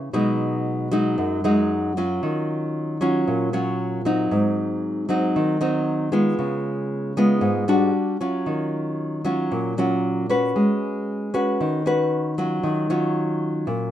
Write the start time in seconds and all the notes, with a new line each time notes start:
Already playing: C#3
0.13 B2 F#3 G#3 D#4
0.91 F#3 G#3 D#4
1.18 F#2
1.44 F#3 G#3 D#4
1.97 F#3 C#4 F4
2.23 D#3
3.01 F#3 C#4 F4
3.28 A#2
3.53 F#3 C#4 F4
4.05 F#3 C4 D#4
4.31 G#2
5.09 F#3 C4 D#4
5.36 D#3
5.61 F#3 C4 D#4
6.12 G#3 B3 F4
6.39 C#3
7.17 G#3 B3 F4
7.41 G#2
7.68 G3 D4 F#4
8.21 F#3 C#4 F4
8.46 D#3
9.24 F#3 C#4 F4
9.52 A#2
9.78 F#3 C#4 F4
10.29 C#4 F#4 B4
10.56 G#3
11.34 C#4 F#4 B4
11.60 D#3
11.86 C#4 F#4 B4
12.38 F#3 C#4 F4
12.63 D#3
12.90 F#3 C#4 F4
13.67 A#2